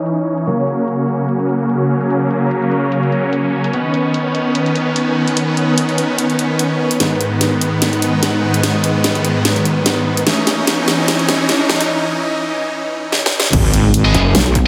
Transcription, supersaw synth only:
Already playing: E3 C#4 D#4
0.47 C#3 F#3 A#3
3.73 D#3 B3
7.00 G#2 D#3 B3
10.27 E3 C#4 D#4

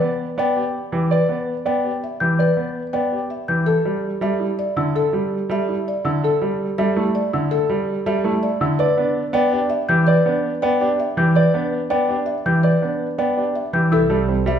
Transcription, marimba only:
0.39 G5
1.12 B4
1.66 G5
2.04 E5
2.40 B4
2.93 G5
3.30 E5
3.66 A4
4.22 E5
4.59 D5
4.96 A4
5.51 E5
5.88 D5
6.24 A4
6.78 E5
7.15 D5
7.51 A4
8.07 E5
8.43 D5
8.79 B4
9.34 G5
9.70 E5
10.07 B4
10.62 G5
11.00 E5
11.36 B4
11.90 G5
12.26 E5
12.63 B4
13.19 G5
13.55 E5
13.93 A4
14.47 E5

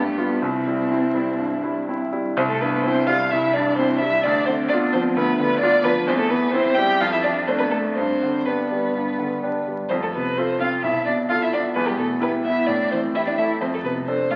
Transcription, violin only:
Already playing: G4
0.40 E4
2.37 C5
2.49 A4
2.60 B4
2.84 C5
3.07 F5
3.31 E5
3.53 D5
3.77 C5
4.00 E5
4.23 D5
4.46 C5
4.68 D5
4.93 C5
5.16 B4
5.38 B4
5.60 D5
5.84 B4
6.07 C5
6.19 A4
6.30 B4
6.51 C5
6.75 G5
7.00 F5
7.13 E5
7.23 D5
7.47 C5
7.58 B4
7.70 A4
7.95 C5
8.45 B4
9.89 C5
10.02 A4
10.14 B4
10.37 C5
10.60 F5
10.83 E5
11.06 D5
11.29 F5
11.43 E5
11.53 D5
11.75 B4
11.87 G4
11.99 A4
12.22 B4
12.44 E5
12.67 D5
12.91 C5
13.15 E5
13.27 D5
13.38 E5
13.61 C5
13.74 A4
13.84 B4
14.07 C5
14.30 F5

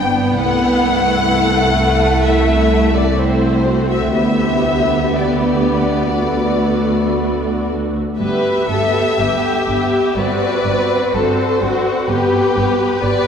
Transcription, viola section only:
Already playing: B3 D4
0.41 A3 E4
2.26 A3 E4
3.19 A3 E4
3.67 F#4
4.16 B3 G4
5.15 B3 G4
6.15 A3 F#4
8.19 B3 G4
8.70 B3 G4
9.19 B3 G4
9.69 B3 G4
10.18 C4 F#4
10.67 C4 F#4
11.15 C4 F#4
11.63 C4 F#4
12.10 B3 G4
12.57 B3 G4
13.03 B3 G4

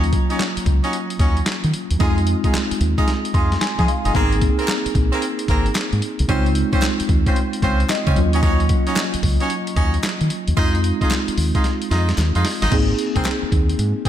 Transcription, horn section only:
0.30 C#4 D#4 F#4 C#5
0.84 C#4 D#4 F#4 C#5
1.20 C#4 D#4 F#4 C#5
2.00 G#3 D#4 F4 G#4
2.44 G#3 D#4 F4 G#4
2.98 G#3 D#4 F4 G#4
3.34 G#3 D#4 F4 G#4
3.79 G#3 D#4 F4 G#4
4.05 G#3 D#4 F4 G#4
4.15 A#3 C4 G#4 A#4
4.59 A#3 C4 G#4 A#4
5.12 A#3 C4 G#4 A#4
5.49 A#3 C4 G#4 A#4
6.29 C4 C#4 F4 C5
6.73 C4 C#4 F4 C5
7.26 C4 C#4 F4 C5
7.62 C4 C#4 F4 C5
8.07 C4 C#4 F4 C5
8.34 C#4 D#4 F#4 C#5
8.43 C#4 D#4 F#4 C#5
8.87 C#4 D#4 F#4 C#5
9.40 C#4 D#4 F#4 C#5
9.76 C#4 D#4 F#4 C#5
10.57 D#4 F4 G#4 D#5
11.01 D#4 F4 G#4 D#5
11.55 D#4 F4 G#4 D#5
11.91 D#4 F4 G#4 D#5
12.35 D#4 F4 G#4 D#5
12.62 D#4 F4 G#4 D#5
13.16 C4 G#4 A#4 C5
14.05 G#4 A#4

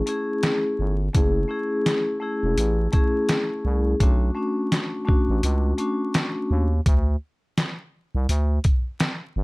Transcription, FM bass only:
0.79 G1
1.15 F#1
2.43 E1
2.58 A1
3.65 C2
4.00 B1
5.29 A1
5.43 C#2
6.51 D#2
6.86 D2
8.15 C2
8.29 D2
9.36 G1

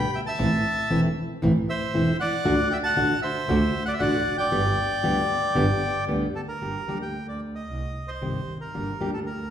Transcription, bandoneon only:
Already playing: G5 B5
0.14 E5 G5
0.26 E5 A5
1.69 C5 E5
2.20 D5 F#5
2.71 E5 G5
2.83 F#5 A5
3.22 C5 E5
3.85 D5 F#5
3.94 E5
3.99 D5 F#5
4.38 D5 G5
6.35 A4
6.48 A#4
7.02 G5
7.29 D5
7.55 D#5
8.08 C5
8.61 A#4
9.14 A4
9.26 A#4

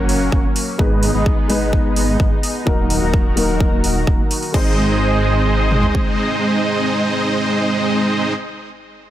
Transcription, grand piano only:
Already playing: F#3 A#3 C#4 A#4
0.78 G#3 B3 D#4 B4
1.48 G#3 B3 D#4 B4
2.65 F#3 A#3 D#4 A#4
3.36 F#3 A#3 D#4 A#4
4.52 G#3 C4 D#4 C5

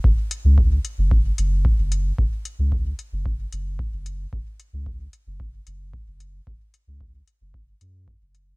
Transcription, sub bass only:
0.04 F#1
0.44 C#2
0.98 F#1
1.38 F#1
1.78 F#1
2.18 F#1
2.59 C#2
3.12 F#1
3.52 F#1
3.93 F#1
4.33 F#1
4.73 C#2
5.27 F#1
5.67 F#1
6.07 F#1
6.47 F#1
6.87 C#2
7.41 F#1
7.81 F#2
8.21 F#1

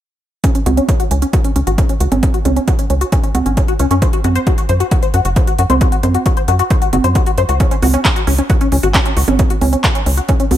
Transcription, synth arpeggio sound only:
0.44 C#4
0.55 C#4
0.66 F#4
0.77 C#4
0.89 C#4
1.00 F#4
1.11 C#4
1.22 C#4
1.33 F#4
1.45 C#4
1.56 C#4
1.67 F#4
1.78 C#4
1.89 C#4
2.00 F#4
2.12 C#4
2.23 C#4
2.34 F#4
2.45 C#4
2.56 C#4
2.68 F#4
2.79 C#4
2.90 C#4
3.01 F#4
3.12 C#4
3.23 C#4
3.35 F#4
3.46 C#4
3.57 C#4
3.68 F#4
3.80 C#4
3.91 C#4
4.02 C5
4.13 F#4
4.24 F#4
4.36 C5
4.47 F#4
4.58 F#4
4.69 C5
4.80 F#4
4.92 F#4
5.03 C5
5.14 F#4
5.25 F#4
5.36 C5
5.47 F#4
5.59 F#4
5.70 C5
5.81 F#4
5.92 F#4
6.03 C5
6.15 F#4
6.26 F#4
6.37 C5
6.48 F#4
6.59 F#4
6.71 C5
6.82 F#4
6.93 F#4
7.04 C5
7.15 F#4
7.27 F#4
7.38 C5
7.49 F#4
7.60 C#4
7.71 C#4
7.83 F#4
7.94 C#4
8.05 C#4
8.16 F#4
8.27 C#4
8.39 C#4
8.50 F#4
8.61 C#4
8.72 C#4
8.83 F#4
8.95 C#4
9.06 C#4
9.17 F#4
9.28 C#4
9.39 C#4
9.50 F#4
9.62 C#4
9.73 C#4
9.84 F#4
9.95 C#4
10.06 C#4
10.17 F#4
10.29 C#4
10.40 C#4
10.51 F#4

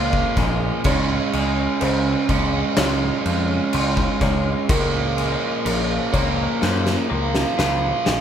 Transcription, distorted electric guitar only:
Already playing: A#2 F3 A#3
0.84 C#3 G#3 C#4
2.28 C#3 G#3 C#4
4.69 A#2 F3 A#3
6.12 A#2 F3 A#3

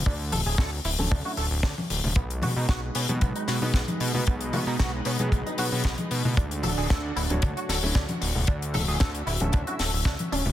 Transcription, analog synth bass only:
0.06 D2
0.32 D1
0.46 D1
0.58 D2
0.85 D1
0.99 D1
1.12 D2
1.37 D1
1.51 D1
1.63 D2
1.90 D1
2.04 D1
2.16 B1
2.42 B2
2.57 B2
2.69 B1
2.95 B2
3.09 B2
3.22 B1
3.48 B2
3.62 B2
3.74 B1
4.01 B2
4.15 B2
4.27 B1
4.53 B2
4.67 B2
4.80 B1
5.06 B2
5.20 B2
5.32 B1
5.58 B2
5.72 B2
5.85 B1
6.11 B2
6.25 B2
6.37 D2
6.64 D1
6.78 D1
6.90 D2
7.16 D1
7.30 D1
7.43 D2
7.69 D1
7.83 D1
7.95 D2
8.21 D1
8.35 D1
8.48 D2
8.74 D1
8.88 D1
9.01 D2
9.27 D1
9.41 D1
9.54 D2
9.79 D1
9.93 D1
10.05 D2
10.32 D1
10.46 D1

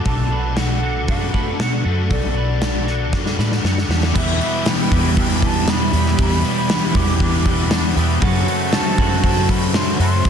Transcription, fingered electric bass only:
0.05 B1
1.09 F#2
1.59 B2
1.85 F#2
2.11 B1
3.13 F#2
3.38 A2
3.64 F#2
3.88 E2
4.16 E2
4.92 E2
5.93 E2
6.18 E2
6.95 E2
7.96 E2
8.22 F#2
8.98 F#2
9.99 F#2
10.25 F#2

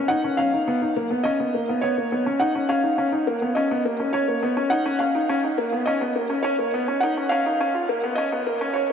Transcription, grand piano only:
0.10 D#4
0.24 C#4
0.39 C#4
0.53 D#4
0.68 B3
0.82 D#4
0.96 A#3
1.10 B3
1.25 C#4
1.40 B3
1.54 A#3
1.69 B3
1.83 B3
1.98 A#3
2.12 B3
2.26 C#4
2.41 D#4
2.55 C#4
2.69 C#4
2.83 D#4
2.98 C#4
3.12 D#4
3.27 A#3
3.42 B3
3.56 C#4
3.71 B3
3.85 A#3
4.00 C#4
4.14 C#4
4.28 A#3
4.43 B3
4.57 C#4
4.71 D#4
4.86 C#4
5.00 C#4
5.15 D#4
5.29 C#4
5.44 D#4
5.58 A#3
5.72 B3
5.87 C#4
6.01 B3
6.16 A#3
6.30 C#4
6.44 C#4
6.59 A#3
6.74 B3
6.88 C#4
7.03 D#4
7.17 C#4
7.32 C#4
7.46 D#4
7.61 C#4
7.74 F4
7.89 A#3
8.04 B3
8.18 C#4
8.32 B3
8.47 A#3
8.61 C#4
8.75 C#4

